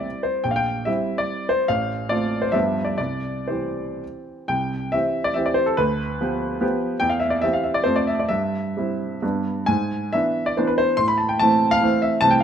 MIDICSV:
0, 0, Header, 1, 2, 480
1, 0, Start_track
1, 0, Key_signature, 0, "major"
1, 0, Tempo, 415225
1, 526, Time_signature, 3, 2, 24, 8
1, 2937, Tempo, 447094
1, 3417, Tempo, 515464
1, 4377, Tempo, 476948
1, 4857, Tempo, 436364
1, 5817, Tempo, 412088
1, 8217, Tempo, 433526
1, 9177, Tempo, 455235
1, 11577, Tempo, 407886
1, 13768, End_track
2, 0, Start_track
2, 0, Title_t, "Grand piano"
2, 0, Program_c, 0, 0
2, 0, Control_c, 0, 64, 127
2, 0, Note_on_c, 0, 55, 29
2, 0, Note_on_c, 0, 60, 28
2, 0, Note_on_c, 0, 64, 31
2, 0, Note_on_c, 0, 74, 61
2, 73, Control_c, 0, 64, 0
2, 267, Note_on_c, 0, 72, 54
2, 280, Note_off_c, 0, 74, 0
2, 486, Note_off_c, 0, 55, 0
2, 488, Note_off_c, 0, 60, 0
2, 491, Note_off_c, 0, 64, 0
2, 504, Note_on_c, 0, 79, 66
2, 513, Note_off_c, 0, 72, 0
2, 518, Note_on_c, 0, 34, 40
2, 589, Note_on_c, 0, 77, 52
2, 591, Note_off_c, 0, 79, 0
2, 646, Note_on_c, 0, 79, 74
2, 673, Note_off_c, 0, 77, 0
2, 704, Control_c, 0, 64, 127
2, 986, Note_on_c, 0, 76, 62
2, 989, Note_off_c, 0, 34, 0
2, 992, Note_off_c, 0, 79, 0
2, 999, Note_on_c, 0, 55, 37
2, 1005, Note_on_c, 0, 64, 35
2, 1013, Note_on_c, 0, 60, 33
2, 1025, Control_c, 0, 64, 0
2, 1365, Note_on_c, 0, 74, 73
2, 1368, Note_off_c, 0, 76, 0
2, 1722, Note_on_c, 0, 72, 71
2, 1727, Note_off_c, 0, 74, 0
2, 1911, Note_off_c, 0, 55, 0
2, 1914, Note_off_c, 0, 64, 0
2, 1918, Note_off_c, 0, 60, 0
2, 1946, Note_on_c, 0, 77, 73
2, 1956, Note_off_c, 0, 72, 0
2, 1958, Note_on_c, 0, 33, 45
2, 2176, Control_c, 0, 64, 127
2, 2420, Note_off_c, 0, 33, 0
2, 2420, Note_on_c, 0, 74, 72
2, 2428, Note_off_c, 0, 77, 0
2, 2434, Note_on_c, 0, 57, 35
2, 2435, Note_on_c, 0, 60, 33
2, 2444, Note_on_c, 0, 65, 42
2, 2793, Note_on_c, 0, 72, 53
2, 2804, Note_off_c, 0, 74, 0
2, 2889, Note_off_c, 0, 57, 0
2, 2889, Note_off_c, 0, 60, 0
2, 2894, Note_off_c, 0, 65, 0
2, 2911, Note_on_c, 0, 76, 69
2, 2925, Note_on_c, 0, 43, 46
2, 2927, Note_off_c, 0, 72, 0
2, 2927, Note_on_c, 0, 53, 36
2, 2931, Note_on_c, 0, 59, 34
2, 2940, Note_on_c, 0, 67, 33
2, 2946, Control_c, 0, 64, 0
2, 3162, Control_c, 0, 64, 127
2, 3264, Note_on_c, 0, 74, 50
2, 3280, Note_off_c, 0, 76, 0
2, 3369, Note_off_c, 0, 53, 0
2, 3370, Note_off_c, 0, 59, 0
2, 3374, Note_off_c, 0, 67, 0
2, 3389, Note_off_c, 0, 74, 0
2, 3396, Note_off_c, 0, 43, 0
2, 3405, Note_on_c, 0, 74, 59
2, 3414, Note_on_c, 0, 36, 33
2, 3425, Control_c, 0, 64, 0
2, 3594, Control_c, 0, 64, 127
2, 3868, Note_off_c, 0, 36, 0
2, 3871, Note_on_c, 0, 72, 39
2, 3879, Note_off_c, 0, 74, 0
2, 3884, Note_on_c, 0, 60, 29
2, 3885, Note_on_c, 0, 52, 32
2, 3893, Note_on_c, 0, 67, 32
2, 4370, Note_off_c, 0, 72, 0
2, 4393, Control_c, 0, 64, 0
2, 4817, Note_off_c, 0, 52, 0
2, 4817, Note_off_c, 0, 60, 0
2, 4822, Note_off_c, 0, 67, 0
2, 4843, Note_on_c, 0, 79, 77
2, 4853, Note_on_c, 0, 36, 41
2, 5085, Control_c, 0, 64, 127
2, 5323, Note_off_c, 0, 36, 0
2, 5323, Note_on_c, 0, 76, 70
2, 5332, Note_off_c, 0, 79, 0
2, 5332, Note_on_c, 0, 52, 32
2, 5343, Note_on_c, 0, 60, 36
2, 5346, Note_on_c, 0, 67, 35
2, 5354, Control_c, 0, 64, 0
2, 5680, Note_on_c, 0, 74, 77
2, 5693, Note_off_c, 0, 76, 0
2, 5769, Note_off_c, 0, 52, 0
2, 5774, Note_off_c, 0, 60, 0
2, 5776, Note_off_c, 0, 67, 0
2, 5784, Note_on_c, 0, 76, 61
2, 5805, Note_off_c, 0, 74, 0
2, 5805, Note_on_c, 0, 52, 37
2, 5809, Note_on_c, 0, 60, 41
2, 5810, Note_on_c, 0, 67, 43
2, 5920, Note_off_c, 0, 76, 0
2, 5920, Note_on_c, 0, 74, 60
2, 6021, Note_on_c, 0, 72, 70
2, 6050, Note_off_c, 0, 74, 0
2, 6158, Note_on_c, 0, 69, 54
2, 6160, Note_off_c, 0, 72, 0
2, 6247, Note_off_c, 0, 52, 0
2, 6249, Note_off_c, 0, 60, 0
2, 6250, Note_off_c, 0, 67, 0
2, 6287, Note_on_c, 0, 71, 78
2, 6289, Note_off_c, 0, 69, 0
2, 6296, Note_on_c, 0, 38, 50
2, 6535, Control_c, 0, 64, 127
2, 6781, Note_off_c, 0, 38, 0
2, 6795, Note_on_c, 0, 53, 42
2, 6799, Note_on_c, 0, 59, 38
2, 6804, Note_on_c, 0, 67, 43
2, 7235, Note_off_c, 0, 53, 0
2, 7238, Note_off_c, 0, 59, 0
2, 7240, Note_off_c, 0, 67, 0
2, 7262, Note_on_c, 0, 59, 50
2, 7265, Note_on_c, 0, 53, 48
2, 7272, Note_on_c, 0, 67, 52
2, 7296, Control_c, 0, 64, 0
2, 7675, Note_off_c, 0, 59, 0
2, 7677, Note_off_c, 0, 53, 0
2, 7681, Note_off_c, 0, 67, 0
2, 7713, Note_on_c, 0, 79, 82
2, 7725, Note_off_c, 0, 71, 0
2, 7725, Note_on_c, 0, 40, 50
2, 7828, Note_on_c, 0, 77, 62
2, 7836, Note_off_c, 0, 79, 0
2, 7931, Control_c, 0, 64, 127
2, 7946, Note_on_c, 0, 76, 61
2, 7956, Note_off_c, 0, 77, 0
2, 8070, Note_on_c, 0, 74, 62
2, 8079, Note_off_c, 0, 76, 0
2, 8198, Note_off_c, 0, 40, 0
2, 8201, Note_on_c, 0, 76, 74
2, 8208, Note_off_c, 0, 74, 0
2, 8215, Note_on_c, 0, 52, 38
2, 8217, Note_on_c, 0, 60, 39
2, 8225, Note_on_c, 0, 67, 41
2, 8233, Control_c, 0, 64, 0
2, 8333, Note_off_c, 0, 76, 0
2, 8333, Note_on_c, 0, 77, 58
2, 8447, Note_on_c, 0, 76, 52
2, 8458, Note_off_c, 0, 77, 0
2, 8566, Note_on_c, 0, 74, 75
2, 8574, Note_off_c, 0, 76, 0
2, 8654, Note_off_c, 0, 52, 0
2, 8655, Note_off_c, 0, 60, 0
2, 8659, Note_off_c, 0, 67, 0
2, 8668, Note_on_c, 0, 72, 72
2, 8682, Note_on_c, 0, 57, 35
2, 8691, Note_off_c, 0, 74, 0
2, 8692, Note_on_c, 0, 41, 48
2, 8696, Note_on_c, 0, 60, 37
2, 8700, Note_on_c, 0, 65, 32
2, 8800, Note_off_c, 0, 72, 0
2, 8802, Note_on_c, 0, 74, 62
2, 8920, Control_c, 0, 64, 127
2, 8927, Note_off_c, 0, 74, 0
2, 8930, Note_on_c, 0, 76, 55
2, 9052, Note_off_c, 0, 76, 0
2, 9065, Note_on_c, 0, 74, 57
2, 9123, Note_off_c, 0, 57, 0
2, 9131, Note_off_c, 0, 60, 0
2, 9132, Note_off_c, 0, 65, 0
2, 9158, Note_off_c, 0, 41, 0
2, 9165, Note_on_c, 0, 76, 72
2, 9179, Note_on_c, 0, 43, 43
2, 9181, Note_off_c, 0, 74, 0
2, 9187, Control_c, 0, 64, 0
2, 9420, Control_c, 0, 64, 127
2, 9651, Note_off_c, 0, 43, 0
2, 9676, Note_on_c, 0, 55, 33
2, 9684, Note_on_c, 0, 60, 31
2, 9692, Note_on_c, 0, 64, 35
2, 10121, Note_off_c, 0, 55, 0
2, 10125, Note_off_c, 0, 60, 0
2, 10129, Note_off_c, 0, 64, 0
2, 10152, Note_off_c, 0, 76, 0
2, 10152, Note_on_c, 0, 43, 43
2, 10154, Note_on_c, 0, 55, 33
2, 10160, Note_on_c, 0, 59, 33
2, 10171, Control_c, 0, 64, 0
2, 10171, Note_on_c, 0, 62, 28
2, 10351, Control_c, 0, 64, 127
2, 10587, Note_off_c, 0, 55, 0
2, 10591, Note_off_c, 0, 59, 0
2, 10596, Note_off_c, 0, 62, 0
2, 10615, Note_off_c, 0, 43, 0
2, 10619, Note_on_c, 0, 80, 71
2, 10638, Note_on_c, 0, 44, 45
2, 10640, Control_c, 0, 64, 0
2, 10853, Control_c, 0, 64, 127
2, 11102, Note_off_c, 0, 44, 0
2, 11106, Note_on_c, 0, 76, 72
2, 11107, Note_off_c, 0, 80, 0
2, 11116, Note_on_c, 0, 59, 32
2, 11120, Note_on_c, 0, 52, 33
2, 11123, Note_on_c, 0, 62, 41
2, 11130, Control_c, 0, 64, 0
2, 11460, Note_on_c, 0, 74, 69
2, 11463, Note_off_c, 0, 76, 0
2, 11536, Note_off_c, 0, 59, 0
2, 11538, Note_off_c, 0, 52, 0
2, 11539, Note_off_c, 0, 62, 0
2, 11573, Note_off_c, 0, 74, 0
2, 11577, Note_on_c, 0, 72, 48
2, 11581, Note_on_c, 0, 52, 43
2, 11585, Note_on_c, 0, 59, 39
2, 11595, Note_on_c, 0, 62, 46
2, 11695, Note_on_c, 0, 71, 60
2, 11697, Note_off_c, 0, 72, 0
2, 11817, Note_off_c, 0, 71, 0
2, 11819, Note_on_c, 0, 72, 74
2, 12011, Note_off_c, 0, 52, 0
2, 12014, Note_off_c, 0, 59, 0
2, 12019, Note_off_c, 0, 62, 0
2, 12045, Note_on_c, 0, 84, 90
2, 12053, Note_on_c, 0, 45, 45
2, 12057, Note_off_c, 0, 72, 0
2, 12170, Note_off_c, 0, 84, 0
2, 12173, Note_on_c, 0, 83, 75
2, 12259, Control_c, 0, 64, 127
2, 12288, Note_on_c, 0, 81, 54
2, 12295, Note_off_c, 0, 83, 0
2, 12415, Note_off_c, 0, 81, 0
2, 12418, Note_on_c, 0, 79, 64
2, 12529, Note_off_c, 0, 45, 0
2, 12545, Note_off_c, 0, 79, 0
2, 12545, Note_on_c, 0, 81, 86
2, 12560, Note_on_c, 0, 52, 44
2, 12570, Note_on_c, 0, 57, 44
2, 12572, Note_on_c, 0, 60, 48
2, 12919, Note_on_c, 0, 77, 99
2, 12922, Note_off_c, 0, 81, 0
2, 13004, Note_off_c, 0, 52, 0
2, 13009, Note_off_c, 0, 57, 0
2, 13010, Note_off_c, 0, 60, 0
2, 13038, Note_on_c, 0, 52, 50
2, 13049, Note_on_c, 0, 57, 48
2, 13052, Control_c, 0, 64, 0
2, 13055, Note_on_c, 0, 60, 53
2, 13278, Note_off_c, 0, 77, 0
2, 13280, Note_on_c, 0, 76, 73
2, 13458, Note_off_c, 0, 52, 0
2, 13464, Note_off_c, 0, 57, 0
2, 13468, Note_off_c, 0, 60, 0
2, 13500, Note_on_c, 0, 81, 97
2, 13508, Note_off_c, 0, 76, 0
2, 13510, Note_on_c, 0, 36, 53
2, 13513, Note_on_c, 0, 52, 44
2, 13525, Note_on_c, 0, 60, 43
2, 13526, Note_on_c, 0, 57, 41
2, 13617, Note_off_c, 0, 81, 0
2, 13617, Note_on_c, 0, 79, 72
2, 13730, Control_c, 0, 64, 127
2, 13732, Note_on_c, 0, 77, 65
2, 13735, Note_off_c, 0, 79, 0
2, 13768, Note_off_c, 0, 36, 0
2, 13768, Note_off_c, 0, 52, 0
2, 13768, Note_off_c, 0, 57, 0
2, 13768, Note_off_c, 0, 60, 0
2, 13768, Note_off_c, 0, 77, 0
2, 13768, End_track
0, 0, End_of_file